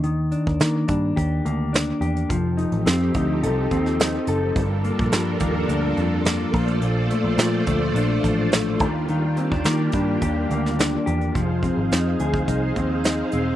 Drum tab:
HH |x-x-x-x-x-x-x-xx|x-xxx-x-x-x-x-x-|x-x-x-x-x-x-x-ox|x-x-x-x-x-x-x-x-|
SD |----o-------o---|----o------oo---|----o-------o---|----o-------o---|
BD |---o--o-o-------|o-----o---o-----|o--o--o-------o-|------o---o---o-|

HH |x-x-x-x-x-x-x-xx|x-x-x-x-x-x-x-x-|
SD |----o------oo---|----o-------o---|
BD |---o--o-o-------|o-o----oo-o-----|